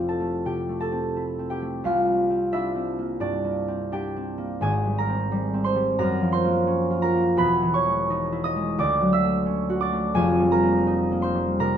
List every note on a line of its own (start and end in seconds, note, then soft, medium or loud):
0.00 1.84 F1 soft
0.00 1.85 F2 medium
0.00 2.69 F3 soft
0.00 0.19 A3 soft
0.00 0.91 C4 soft
0.00 1.15 E4 medium
0.00 1.85 F4 medium
0.00 0.46 G4 medium
0.00 1.83 F5 medium
0.00 0.45 G5 medium
0.09 0.80 A4 medium
0.09 0.79 A5 medium
0.20 0.68 A3 soft
0.45 1.85 C3 soft
0.45 1.50 G4 medium
0.45 1.05 G5 medium
0.69 1.60 A3 soft
0.80 1.86 A4 medium
0.80 1.85 A5 medium
0.92 1.38 C4 medium
1.16 1.86 E4 soft
1.39 2.29 C4 soft
1.50 3.93 G4 medium
1.50 2.07 G5 medium
1.62 1.86 A3 soft
1.84 4.66 C2 medium
1.84 4.67 F4 medium
1.84 4.66 F5 medium
2.06 2.97 A#3 soft
2.30 2.74 C4 soft
2.52 3.20 D4 medium
2.52 4.67 E4 medium
2.52 3.71 E5 loud
2.75 3.67 C4 medium
2.99 3.43 A#3 soft
3.20 4.66 G2 medium
3.20 3.91 D4 medium
3.20 4.66 D5 medium
3.44 4.37 A#3 soft
3.68 4.15 C4 medium
3.92 4.65 D4 medium
3.92 6.02 G4 medium
3.92 6.02 G5 medium
4.16 5.08 C4 medium
4.38 4.65 A#3 medium
4.61 6.01 G#1 medium
4.61 6.02 G#2 medium
4.61 6.02 G#4 medium
4.61 6.01 G#5 loud
4.86 5.30 G3 medium
4.98 5.99 A#4 medium
4.98 5.97 A#5 medium
5.09 5.53 C4 medium
5.32 5.74 G3 medium
5.54 6.02 C4 medium
5.64 6.02 C5 medium
5.64 6.01 C6 loud
5.76 6.01 G3 medium
5.99 7.41 F#2 medium
5.99 7.03 A#4 medium
5.99 7.01 A#5 loud
6.21 7.41 F3 medium
6.32 7.41 C5 medium
6.32 7.52 C6 loud
6.45 7.13 A#3 medium
6.67 7.40 C#4 medium
6.91 7.41 F4 medium
7.02 7.41 A#4 medium
7.02 7.41 A#5 loud
7.15 7.41 A#3 medium
7.37 8.80 E1 medium
7.37 8.81 E2 medium
7.37 8.81 B4 medium
7.37 8.81 B5 loud
7.62 8.81 E3 medium
7.74 10.21 C#5 medium
7.74 8.92 C#6 loud
7.85 8.55 G#3 medium
8.10 8.82 D#4 medium
8.32 8.81 E4 medium
8.44 8.82 D#5 medium
8.44 8.81 D#6 loud
8.56 8.82 G#3 medium
8.78 10.20 D2 medium
8.78 9.81 D5 medium
8.78 9.79 D6 loud
9.01 10.20 F#3 medium
9.13 10.20 E5 medium
9.13 10.31 E6 loud
9.24 9.91 A3 medium
9.46 10.19 C#4 medium
9.70 10.19 F#4 medium
9.80 10.20 D5 medium
9.80 10.19 D6 loud
9.92 10.19 A3 medium
10.14 11.78 F1 medium
10.14 11.78 F2 medium
10.14 11.78 G#4 medium
10.14 11.78 G#5 loud
10.40 11.33 G3 medium
10.52 11.59 A#4 medium
10.52 11.59 A#5 loud
10.63 11.11 A#3 medium
10.87 11.78 D#4 medium
11.12 11.78 A#3 medium
11.22 11.78 C5 medium
11.22 11.78 C6 loud
11.35 11.78 G3 medium
11.59 11.78 C3 medium
11.59 11.78 A#4 medium
11.59 11.78 A#5 loud